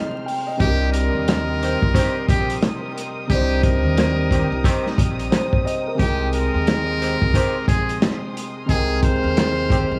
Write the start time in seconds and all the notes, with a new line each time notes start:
Already playing: C3 G#3 D#4 A#4 D#5 G5 C6 F6
0.26 G5, open hi-hat
0.47 D#5
0.57 C2 C3 G3 D4 G4 A#4 G5 C6 D#6, kick, closed hi-hat
0.62 D#4 A#4
0.92 A#4, closed hi-hat
1.15 D#2
1.28 cross-stick, snare, closed hi-hat
1.62 D#3 C4 G4, closed hi-hat
1.82 C2, kick
1.94 D#3 C4 G4, kick, snare, closed hi-hat
2.29 A#1 G4, kick, closed hi-hat
2.50 closed hi-hat
2.62 cross-stick, snare, closed hi-hat
2.98 closed hi-hat
3.27 C2 C3 G3 D4 G4 A#5, kick, closed hi-hat
3.32 D#4 C5
3.63 A#4, kick, closed hi-hat
3.85 D#2
3.97 cross-stick, snare, closed hi-hat
4.31 D#3 C4 G4, kick, closed hi-hat
4.52 C2
4.64 D#3 C4 G4, kick, closed hi-hat
4.86 snare
4.98 A#1, kick, closed hi-hat
5.19 closed hi-hat
5.31 C5, cross-stick, snare, closed hi-hat
5.53 kick
5.65 D#5, closed hi-hat
5.87 A#4
5.95 C3 G#3 D#4
5.99 C2 G#3 G4 A#4 G5 C6, kick, closed hi-hat
6.33 A#4, closed hi-hat
6.54 D#2
6.67 cross-stick, snare, closed hi-hat
7.01 D#3 C4 G4, closed hi-hat
7.22 C2, kick
7.34 D#3 C4 G4, kick, closed hi-hat
7.68 A#1 G#4, kick, closed hi-hat
7.89 closed hi-hat
8.02 cross-stick, snare, closed hi-hat
8.37 closed hi-hat
8.66 C2 C3 G#3 D#4 G#4 F6, kick, closed hi-hat
8.71 A#4 G5
9.03 C5, kick, closed hi-hat
9.24 D#2
9.37 cross-stick, snare, closed hi-hat
9.70 D#3 C4 G4, kick, closed hi-hat
9.92 C2